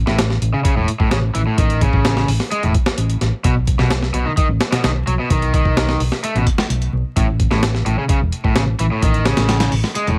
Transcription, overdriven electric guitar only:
0.07 0.16 A2 medium
0.54 0.59 C#3 medium
0.65 0.74 C#3 medium
0.77 0.88 A2 medium
1.00 1.09 A2 medium
1.11 1.17 C#3 medium
1.35 1.40 E3 medium
1.47 1.56 A2 medium
1.58 1.80 D#3 medium
1.82 2.27 C#3 medium
2.52 2.63 G#3 medium
2.63 2.72 A2 medium
3.45 3.53 B2 medium
3.80 3.88 B2 medium
4.14 4.25 B2 medium
4.26 4.31 D#3 medium
4.38 4.46 D#3 medium
4.72 4.81 B2 medium
4.84 4.89 D#3 medium
5.07 5.13 F#3 medium
5.19 5.28 B2 medium
5.31 5.53 D#3 medium
5.54 6.00 D#3 medium
6.24 6.35 A3 medium
6.36 6.44 B2 medium
7.17 7.26 A2 medium
7.52 7.60 A2 medium
7.86 7.97 A2 medium
7.98 8.04 C#3 medium
8.10 8.18 C#3 medium
8.45 8.53 A2 medium
8.56 8.62 C#3 medium
8.80 8.85 E3 medium
8.92 9.00 A2 medium
9.03 9.25 D#3 medium
9.26 9.71 C#3 medium
9.96 10.07 G#3 medium
10.07 10.16 A2 medium

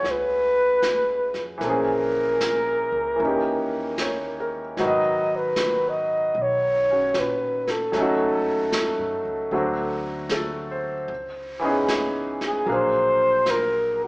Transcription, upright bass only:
0.03 1.30 C#2 medium
1.34 1.60 F2 medium
1.61 2.88 A#1 medium
2.92 3.17 C#2 medium
3.20 4.74 D#2 medium
4.77 6.31 G#1 medium
6.35 7.10 B1 medium
7.14 7.89 A#2 medium
7.93 8.94 D#2 medium
8.99 9.23 F#2 medium
9.25 9.49 C#2 medium
9.51 11.05 D2 medium
11.08 12.63 C#2 medium
12.66 14.07 A#1 medium

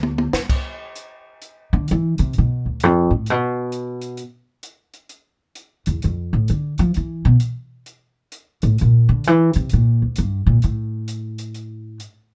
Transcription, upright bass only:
0.00 0.30 D2 medium
0.33 muted upright bass stroke soft
1.73 1.88 D3 medium
1.91 2.19 E3 medium
2.19 2.34 C3 medium
2.38 2.65 B2 medium
2.66 2.83 D2 soft
2.83 3.10 F2 medium
3.11 3.30 A2 medium
3.30 4.20 B2 medium
5.87 6.02 E2 medium
6.04 6.32 F2 medium
6.33 6.48 A2 medium
6.50 6.78 D3 medium
6.79 6.94 F3 medium
6.97 7.24 E3 medium
7.25 7.34 B2 medium
8.63 8.78 A2 medium
8.81 9.08 A#2 medium
9.09 9.27 D3 medium
9.27 9.55 E3 loud
9.56 9.71 C3 medium
9.73 10.01 A#2 medium
10.02 10.17 D2 soft
10.18 10.46 G2 medium
10.46 10.62 A#2 medium
10.64 11.97 A2 medium

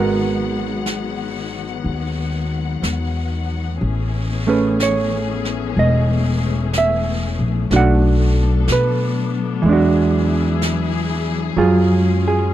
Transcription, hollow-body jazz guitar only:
0.00 3.81 G#3 soft
0.00 3.82 B3 soft
0.00 3.83 F#4 medium
0.00 3.84 A#4 medium
4.47 7.71 A3 soft
4.47 7.72 C#4 soft
4.47 7.72 G#4 soft
4.47 4.82 B4 soft
4.83 5.79 C#5 medium
5.79 6.71 D#5 medium
6.78 7.76 E5 medium
7.72 9.65 A3 soft
7.72 9.66 D4 medium
7.72 9.66 F#4 soft
7.76 8.67 F#5 medium
8.72 10.59 B4 medium
9.62 11.56 E3 medium
9.62 11.56 G#3 medium
9.69 11.60 D4 medium
9.69 11.58 F#4 medium
11.57 12.54 F#3 medium
11.57 12.54 F4 medium
11.57 12.26 G#4 medium
12.28 12.54 G#4 medium

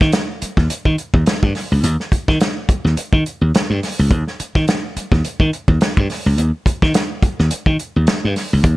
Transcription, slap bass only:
0.01 0.11 D#3 medium
0.42 muted slap bass stroke soft
0.57 0.67 D#2 medium
0.71 muted slap bass stroke soft
0.85 0.95 D#3 medium
1.14 1.24 D#2 medium
1.27 muted slap bass stroke soft
1.43 1.52 G2 medium
1.72 1.81 C#2 medium
1.83 1.96 D#2 loud
2.12 muted slap bass stroke soft
2.28 2.38 D#3 loud
2.69 muted slap bass stroke soft
2.85 2.94 D#2 medium
2.97 muted slap bass stroke soft
3.13 3.23 D#3 medium
3.41 3.51 D#2 medium
3.54 muted slap bass stroke soft
3.70 3.79 G2 medium
3.99 4.11 C#2 medium
4.11 4.23 D#2 loud
4.40 muted slap bass stroke medium
4.55 4.65 D#3 medium
4.96 muted slap bass stroke soft
5.12 5.21 D#2 medium
5.25 muted slap bass stroke soft
5.40 5.50 D#3 loud
5.68 5.78 D#2 medium
5.82 muted slap bass stroke soft
5.98 6.07 G2 medium
6.26 6.35 C#2 medium
6.39 6.50 D#2 loud
6.66 muted slap bass stroke soft
6.82 6.92 D#3 medium
7.23 muted slap bass stroke soft
7.39 7.49 D#2 medium
7.53 muted slap bass stroke soft
7.66 7.76 D#3 medium
7.96 8.05 D#2 medium
8.24 8.34 G2 medium
8.53 8.62 C#2 medium
8.64 8.76 D#2 loud

